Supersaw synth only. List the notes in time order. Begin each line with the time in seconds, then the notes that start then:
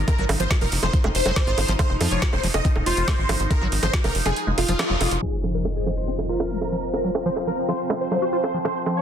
0.08 A#4
0.40 C5
0.61 A#4
0.83 C5
1.15 C5
1.79 C5
2.11 C#5
2.33 C5
2.54 D#5
2.86 C5
3.51 A#4
3.83 C5
4.04 A#4
4.26 G#4
4.58 F4
5.22 G#4
5.54 A#4
5.76 G#4
5.97 C5
6.29 A#4
6.93 A#4
7.26 C5
7.47 A#4
7.68 C5
8.01 C5
8.65 C5
8.97 C#5